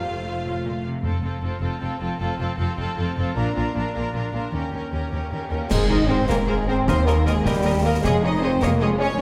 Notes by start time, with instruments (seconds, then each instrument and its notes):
Already playing: double bass section F1, cello section F2, viola section A3 F4, french horn section F4, violin section C5 F5
0.45 cello section A2
0.65 cello section A#2
0.84 cello section C3
1.03 double bass section F1, cello section F2, timpani F2, viola section C4, violin section F4 A4
1.22 double bass section F1, cello section F2, viola section C4, violin section F4 A4
1.42 double bass section F1, cello section F2, viola section C4, violin section F4 A4
1.61 double bass section F1, cello section F2, viola section C4, violin section F4 A4
1.81 double bass section F1, cello section F2, viola section C4, violin section F4 A4
1.99 double bass section F1, cello section F2, viola section C4, violin section F4 A4
2.19 double bass section F1, cello section F2, viola section C4, violin section F4 A4
2.39 double bass section F1, cello section F2, viola section C4, violin section F4 A4
2.57 double bass section F1, cello section F2, viola section C4, violin section F4 A4
2.78 double bass section F1, cello section F2, viola section C4, violin section F4 A4
2.97 double bass section F1, cello section F2, viola section C4, violin section F4 A4
3.16 double bass section F1, cello section F2, viola section C4, violin section F4 A4
3.36 double bass section A#1, cello section A#2, viola section D4, violin section F4 A#4
3.55 double bass section A#1, cello section A#2, viola section D4, violin section F4 A#4
3.75 double bass section A#1, cello section A#2, viola section D4, violin section F4 A#4
3.94 double bass section A#1, cello section A#2, viola section D4, violin section F4 A#4
4.13 double bass section A#1, cello section A#2, viola section D4, violin section F4 A#4
4.32 double bass section A#1, cello section A#2, viola section D4, violin section F4 A#4
4.51 double bass section D#2, cello section D#2, viola section C#4, violin section G4 A#4
4.71 double bass section D#2, cello section D#2, viola section C#4, violin section G4 A#4
4.92 double bass section D#2, cello section D#2, viola section C#4, violin section G4 A#4
5.11 cello section D#2, double bass section D#2, viola section C#4, violin section G4 A#4
5.32 cello section D#2, double bass section D#2, viola section C#4, violin section G4 A#4
5.50 cello section D#2, double bass section D#2, french horn section A#3, viola section C#4, violin section G4 A#4
5.69 double bass section G#1, cello section G#2, french horn section G#3, viola section G#4 A#4, violin section G#4 C5, concert bass drum, snare, crash
5.88 french horn section D#4, viola section G#4 A#4, violin section C5 D#5
6.07 french horn section C4, viola section G#4 A#4, violin section C5
6.28 double bass section G#1, cello section G#2, french horn section A#3, viola section G#4 A#4, violin section A#4 C5, concert bass drum, snare
6.48 french horn section G#3, violin section G#4 C5, viola section G#4 A#4
6.67 french horn section C4, viola section G#4 A#4, violin section C5
6.87 cello section D#2, double bass section D#2, timpani D#3, french horn section C4, viola section A#4, violin section C5 D#5, concert bass drum, snare
7.07 french horn section A#3, viola section A#4, violin section A#4 D#5, snare
7.27 french horn section G#3, violin section G#4 D#5, viola section A#4, snare
7.45 double bass section D#2, cello section D#2, french horn section G3, violin section G4 D#5, viola section A#4, concert bass drum, snare
7.65 viola section A#4, violin section D#5
7.83 french horn section A#3, violin section A#4 D#5, viola section A#4
8.02 double bass section F1, cello section F2, french horn section G#3, viola section G#4 C#5, violin section G#4, concert bass drum, snare
8.06 violin section D#5
8.24 french horn section D#4, viola section G#4 C#5, violin section D#5
8.42 french horn section C4, viola section G#4 C#5, violin section C5 D#5
8.62 double bass section F1, cello section F2, french horn section A#3, viola section G#4 C#5, violin section A#4 D#5, concert bass drum, snare
8.81 french horn section G#3, violin section G#4 D#5, viola section G#4 C#5
8.99 french horn section C#4, viola section G#4 C#5, violin section C#5 D#5
9.18 french horn section C#4